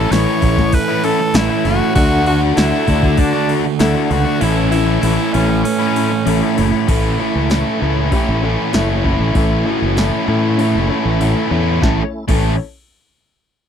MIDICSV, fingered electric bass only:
0, 0, Header, 1, 2, 480
1, 0, Start_track
1, 0, Key_signature, 3, "major"
1, 0, Tempo, 616650
1, 1524, Time_signature, 4, 2, 24, 8
1, 10654, End_track
2, 0, Start_track
2, 0, Title_t, "Fingered electric bass"
2, 0, Program_c, 0, 33
2, 88, Note_on_c, 0, 33, 99
2, 195, Note_off_c, 0, 33, 0
2, 329, Note_on_c, 0, 33, 111
2, 542, Note_off_c, 0, 33, 0
2, 1046, Note_on_c, 0, 33, 90
2, 1152, Note_off_c, 0, 33, 0
2, 1284, Note_on_c, 0, 30, 92
2, 1391, Note_off_c, 0, 30, 0
2, 1524, Note_on_c, 0, 38, 103
2, 1950, Note_off_c, 0, 38, 0
2, 2003, Note_on_c, 0, 38, 89
2, 2109, Note_off_c, 0, 38, 0
2, 2239, Note_on_c, 0, 38, 99
2, 2454, Note_off_c, 0, 38, 0
2, 2958, Note_on_c, 0, 38, 96
2, 3065, Note_off_c, 0, 38, 0
2, 3196, Note_on_c, 0, 37, 99
2, 3304, Note_off_c, 0, 37, 0
2, 3440, Note_on_c, 0, 33, 99
2, 3866, Note_off_c, 0, 33, 0
2, 3917, Note_on_c, 0, 33, 103
2, 4024, Note_off_c, 0, 33, 0
2, 4162, Note_on_c, 0, 33, 110
2, 4374, Note_off_c, 0, 33, 0
2, 4877, Note_on_c, 0, 33, 93
2, 4984, Note_off_c, 0, 33, 0
2, 5126, Note_on_c, 0, 30, 87
2, 5229, Note_off_c, 0, 30, 0
2, 5362, Note_on_c, 0, 33, 101
2, 5574, Note_off_c, 0, 33, 0
2, 5724, Note_on_c, 0, 37, 76
2, 5936, Note_off_c, 0, 37, 0
2, 6086, Note_on_c, 0, 37, 82
2, 6297, Note_off_c, 0, 37, 0
2, 6450, Note_on_c, 0, 33, 96
2, 6660, Note_off_c, 0, 33, 0
2, 6805, Note_on_c, 0, 30, 98
2, 7125, Note_off_c, 0, 30, 0
2, 7163, Note_on_c, 0, 33, 73
2, 7270, Note_off_c, 0, 33, 0
2, 7281, Note_on_c, 0, 33, 95
2, 7496, Note_off_c, 0, 33, 0
2, 7644, Note_on_c, 0, 30, 83
2, 7858, Note_off_c, 0, 30, 0
2, 8002, Note_on_c, 0, 45, 89
2, 8368, Note_on_c, 0, 30, 90
2, 8379, Note_off_c, 0, 45, 0
2, 8474, Note_off_c, 0, 30, 0
2, 8604, Note_on_c, 0, 33, 83
2, 8820, Note_off_c, 0, 33, 0
2, 8959, Note_on_c, 0, 40, 91
2, 9177, Note_off_c, 0, 40, 0
2, 9203, Note_on_c, 0, 33, 92
2, 9340, Note_off_c, 0, 33, 0
2, 9565, Note_on_c, 0, 33, 90
2, 9791, Note_off_c, 0, 33, 0
2, 10654, End_track
0, 0, End_of_file